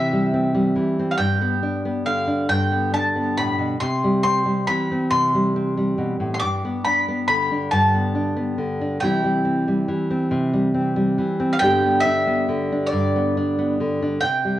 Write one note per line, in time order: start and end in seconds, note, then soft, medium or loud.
0.00 0.76 C3 medium
0.00 0.74 E3 medium
0.00 0.12 G3 soft
0.00 0.32 C4 soft
0.00 1.21 E4 medium
0.00 1.08 E5 medium
0.13 0.54 G3 soft
0.34 0.98 C4 medium
0.54 1.41 G3 soft
0.75 1.14 E3 soft
0.99 1.15 C4 soft
1.11 1.17 F5 medium
1.18 2.48 G2 medium
1.18 2.06 G5 medium
1.41 1.84 B3 medium
1.63 2.26 D4 medium
1.85 2.70 B3 soft
2.06 3.80 D3 medium
2.06 2.49 F5 medium
2.28 2.92 D4 soft
2.49 3.75 G2 medium
2.49 2.93 G5 medium
2.71 3.15 B3 soft
2.93 3.75 D4 medium
2.93 3.37 A5 medium
3.16 3.75 B3 medium
3.37 3.58 A2 medium
3.37 3.80 B5 medium
3.59 3.80 B2 medium
3.80 4.68 C3 medium
3.80 4.22 C6 medium
4.04 4.45 G3 medium
4.23 4.89 C4 medium
4.23 4.67 C6 medium
4.46 5.34 G3 soft
4.68 6.36 E3 medium
4.68 5.10 B5 medium
4.92 5.55 C4 soft
5.11 5.98 C3 medium
5.11 6.33 C6 medium
5.35 5.77 G3 medium
5.56 6.37 C4 medium
5.77 6.64 G3 soft
5.98 6.19 B2 soft
6.20 6.41 A2 medium
6.34 6.39 C6 medium
6.40 7.71 G2 medium
6.40 6.81 D6 medium
6.65 7.07 B3 soft
6.85 7.50 D4 medium
6.85 7.27 B5 medium
7.08 7.93 B3 soft
7.28 8.57 D3 medium
7.28 7.71 B5 medium
7.52 8.14 D4 soft
7.71 8.97 G2 medium
7.71 9.00 A5 medium
7.94 8.35 B3 medium
8.15 8.80 D4 soft
8.36 8.96 B3 soft
8.58 9.01 D3 soft
8.81 8.97 D4 soft
9.00 9.88 C3 medium
9.00 9.87 E3 medium
9.00 9.23 G3 medium
9.00 9.43 C4 soft
9.00 9.94 G5 medium
9.04 11.63 E4 medium
9.24 9.67 G3 soft
9.45 10.09 C4 medium
9.68 10.53 G3 soft
9.88 11.17 E3 medium
10.11 10.73 C4 soft
10.31 11.18 C3 medium
10.53 10.96 G3 medium
10.74 11.39 C4 medium
10.96 11.62 G3 medium
11.18 11.56 E3 medium
11.40 11.56 C4 medium
11.53 11.59 F5 medium
11.59 12.91 G2 medium
11.59 12.47 D3 soft
11.59 11.82 B3 soft
11.59 12.05 D4 medium
11.59 12.05 G5 medium
11.64 14.60 G4 medium
11.84 12.26 B3 soft
12.01 12.86 E5 medium
12.06 12.71 D4 medium
12.27 13.14 B3 soft
12.49 13.79 D3 medium
12.72 13.36 D4 soft
12.87 13.72 D5 medium
12.93 14.17 G2 medium
13.16 13.57 B3 medium
13.37 14.01 D4 medium
13.58 14.17 B3 soft
13.80 14.23 D3 medium
14.02 14.18 D4 soft
14.21 14.60 C3 medium
14.21 14.60 G5 medium
14.45 14.60 G3 soft